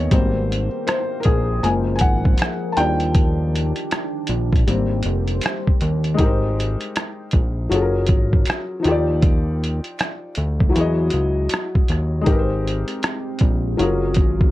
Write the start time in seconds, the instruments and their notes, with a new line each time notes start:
Already playing: felt piano D#3 F#3 G#3 C#5 D#5 E5
0.11 analog synth bass G#1, felt piano G3 A#3 C4 C5, ambient pad A#3 A#4 C5 G5, kick, closed hi-hat
0.52 closed hi-hat
0.87 felt piano C5, finger snap, cross-stick, closed hi-hat
1.20 felt piano A#4, closed hi-hat
1.25 analog synth bass A#1, felt piano G#4, kick
1.63 analog synth bass F#1, ambient pad F3 G#4 A#4, felt piano F3 G#3 A#3 G#5, closed hi-hat
1.96 felt piano G#5, closed hi-hat
2.01 analog synth bass G#1, felt piano F#5, kick
2.25 kick
2.38 finger snap, closed hi-hat
2.42 cross-stick
2.72 ambient pad D#3 D4, felt piano A5
2.77 analog synth bass D#2, felt piano F3 G3 D4 G5, ambient pad G4, closed hi-hat
3.00 closed hi-hat
3.15 kick, closed hi-hat
3.56 closed hi-hat
3.76 closed hi-hat
3.91 finger snap, cross-stick, closed hi-hat
4.27 analog synth bass A#1, closed hi-hat
4.53 kick, closed hi-hat
4.66 analog synth bass G#1, ambient pad G3 G4 A#4 C5, felt piano G3 A#3 C4, closed hi-hat
5.03 analog synth bass F1, closed hi-hat
5.28 closed hi-hat
5.41 finger snap, closed hi-hat
5.46 cross-stick
5.67 kick
5.81 analog synth bass D#2, closed hi-hat
6.04 closed hi-hat
6.14 felt piano G#3 D#4
6.19 analog synth bass G#1, felt piano G4, kick, closed hi-hat
6.23 felt piano A#4 C5
6.60 closed hi-hat
6.81 closed hi-hat
6.96 finger snap, cross-stick, closed hi-hat
7.31 analog synth bass A#1, kick, closed hi-hat
7.69 analog synth bass F#1, felt piano F#3 C#4 F4, closed hi-hat
7.74 felt piano G#4 A4
7.82 felt piano A#4
8.07 analog synth bass G#1, kick, closed hi-hat
8.33 kick
8.45 finger snap, closed hi-hat
8.50 cross-stick
8.80 felt piano F3 D#4
8.84 analog synth bass D#2, felt piano F4 G4, cross-stick, closed hi-hat
8.91 felt piano D5
9.22 kick, closed hi-hat
9.64 closed hi-hat
9.84 closed hi-hat
9.99 finger snap, cross-stick, closed hi-hat
10.35 analog synth bass D2, closed hi-hat
10.60 kick
10.69 felt piano F#3 E4
10.75 analog synth bass E2, felt piano F#4 G#4, closed hi-hat
10.81 felt piano D#5
11.10 analog synth bass C#2, closed hi-hat
11.49 finger snap, closed hi-hat
11.54 cross-stick
11.75 kick
11.88 analog synth bass D#2, cross-stick, closed hi-hat
12.21 felt piano G#3 D#4
12.26 analog synth bass G#1, ambient pad G#3 C4 G4, felt piano G4 A#4, kick, closed hi-hat
12.32 felt piano B4
12.39 felt piano C5
12.68 closed hi-hat
12.88 closed hi-hat
13.03 finger snap, cross-stick, closed hi-hat
13.39 analog synth bass A#1, kick, closed hi-hat
13.77 analog synth bass F#1, felt piano F#3 C#4 F4, ambient pad F#3 F4 G#4 A#4, closed hi-hat
13.81 felt piano G#4 A#4
14.14 analog synth bass G#1, kick, closed hi-hat
14.41 kick